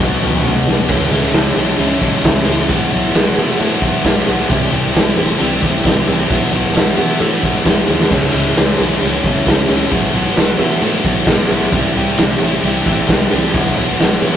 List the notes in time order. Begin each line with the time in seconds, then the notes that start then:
0.00 B1 B2 F#3 B3 D#4 F#4
0.22 B1, floor tom
0.33 floor tom
0.44 B1, high tom
0.67 B1, snare
0.77 floor tom
0.88 C#2 C#3 E3 G#3 C#4 E4, kick, crash
1.00 closed hi-hat
1.11 C#2 C#3 E3 G#3 C#4 E4, closed hi-hat
1.22 snare, closed hi-hat
1.33 C#2 C#3 E3 G#3 C#4 E4, snare, closed hi-hat
1.46 snare
1.56 B1 C#3 E3 G#3 C#4 E4, closed hi-hat
1.78 C#2 C#3 E3 G#3 C#4 E4, closed hi-hat
1.90 closed hi-hat
2.01 B1 C#3 E3 G#3 C#4 E4, kick, closed hi-hat
2.23 C#2 C#3 E3 G#3 C#4 E4, kick, snare, closed hi-hat
2.46 C#2 C#3 E3 G#3 C#4 E4, closed hi-hat
2.58 closed hi-hat
2.68 B1 B2 E3 F#3 B3 E4 F#4, kick, closed hi-hat
2.81 closed hi-hat
2.90 B1 B2 E3 F#3 B3 E4 F#4, closed hi-hat
3.13 B1 B2 E3 F#3 B3 E4 F#4, snare, closed hi-hat
3.25 closed hi-hat
3.35 B2 E3 F#3 B3 E4 F#4, closed hi-hat
3.48 closed hi-hat
3.58 A2 B2 E3 F#3 B3 E4 F#4, closed hi-hat
3.71 closed hi-hat
3.80 B1 B2 E3 F#3 B3 E4 F#4, kick, closed hi-hat
3.93 closed hi-hat
4.03 B1 B2 E3 F#3 B3 E4 F#4, kick, snare, closed hi-hat
4.26 B1 B2 E3 F#3 B3 E4 F#4, closed hi-hat
4.48 C2 C3 E3 G3 C4 E4 G4, kick, closed hi-hat
4.62 closed hi-hat
4.71 C2 C3 E3 G3 C4 E4 G4, closed hi-hat
4.84 closed hi-hat
4.94 C2 C3 E3 G3 C4 E4 G4, snare, closed hi-hat
5.16 A1 C3 E3 G3 C4 E4 G4, closed hi-hat
5.39 C2 C3 E3 G3 C4 E4 G4, closed hi-hat
5.52 closed hi-hat
5.62 A1 C3 E3 G3 C4 E4 G4, kick, closed hi-hat
5.84 C2 C3 E3 G3 C4 E4 G4, kick, snare, closed hi-hat
6.06 C2 C3 E3 G3 C4 E4 G4, closed hi-hat
6.19 closed hi-hat
6.29 B1 B2 E3 F#3 B3 E4 F#4, kick, closed hi-hat
6.41 closed hi-hat
6.51 B1 B2 E3 F#3 B3 E4 F#4, closed hi-hat
6.66 snare
6.74 B1 B2 E3 F#3 B3 E4 F#4, snare, closed hi-hat
6.88 snare
6.97 B2 E3 F#3 B3 E4 F#4, closed hi-hat
7.10 closed hi-hat
7.19 A2 B2 E3 F#3 B3 E4 F#4, closed hi-hat
7.32 closed hi-hat
7.42 B1 B2 E3 F#3 B3 E4 F#4, kick, snare, closed hi-hat
7.54 closed hi-hat
7.65 B1 B2 E3 F#3 B3 E4 F#4, kick, snare, closed hi-hat
7.87 D#2 B2 E3 F#3 B3 E4 F#4, snare
8.01 snare
8.10 C#2 C#3 E3 G#3 C#4 E4, kick, crash
8.22 closed hi-hat
8.32 C#2 C#3 E3 G#3 C#4 E4, closed hi-hat
8.45 closed hi-hat
8.55 C#2 C#3 E3 G#3 C#4 E4, snare, closed hi-hat
8.69 snare
8.78 B1 C#3 E3 G#3 C#4 E4, closed hi-hat
9.00 C#2 C#3 E3 G#3 C#4 E4, closed hi-hat
9.13 closed hi-hat
9.23 B1 C#3 E3 G#3 C#4 E4, kick, closed hi-hat
9.46 C#2 C#3 E3 G#3 C#4 E4, kick, snare, closed hi-hat
9.68 C#2 C#3 E3 G#3 C#4 E4, closed hi-hat
9.81 closed hi-hat
9.91 B1 B2 E3 F#3 B3 E4 F#4, kick, closed hi-hat
10.03 closed hi-hat
10.13 B1 B2 E3 F#3 B3 E4 F#4, closed hi-hat
10.27 snare
10.36 B1 B2 E3 F#3 B3 E4 F#4, snare, closed hi-hat
10.48 snare, closed hi-hat
10.59 B2 E3 F#3 B3 E4 F#4, closed hi-hat
10.70 closed hi-hat
10.81 A2 B2 E3 F#3 B3 E4 F#4, closed hi-hat
10.93 closed hi-hat
11.04 B1 B2 E3 F#3 B3 E4 F#4, kick, closed hi-hat
11.15 closed hi-hat
11.26 B1 B2 E3 F#3 B3 E4 F#4, kick, snare, closed hi-hat
11.49 B1 B2 E3 F#3 B3 E4 F#4, closed hi-hat
11.72 C2 C3 E3 G3 C4 E4 G4, kick, closed hi-hat
11.83 closed hi-hat
11.95 C2 C3 E3 G3 C4 E4 G4, closed hi-hat
12.06 snare, closed hi-hat
12.18 C2 C3 E3 G3 C4 E4 G4, snare, closed hi-hat
12.40 A1 C3 E3 G3 C4 E4 G4, closed hi-hat
12.63 C2 C3 E3 G3 C4 E4 G4, closed hi-hat
12.74 closed hi-hat
12.86 A1 C3 E3 G3 C4 E4 G4, kick, snare, closed hi-hat
13.08 C2 C3 E3 G3 C4 E4 G4, kick, snare, closed hi-hat
13.30 C2 C3 E3 G3 C4 E4 G4, closed hi-hat
13.42 closed hi-hat
13.54 B1 B2 E3 F#3 B3 E4 F#4, kick, closed hi-hat
13.66 closed hi-hat
13.76 B1 B2 E3 F#3 B3 E4 F#4, closed hi-hat
13.99 B1 B2 E3 F#3 B3 E4 F#4, snare, closed hi-hat
14.11 closed hi-hat
14.21 B2 E3 F#3 B3 E4 F#4, closed hi-hat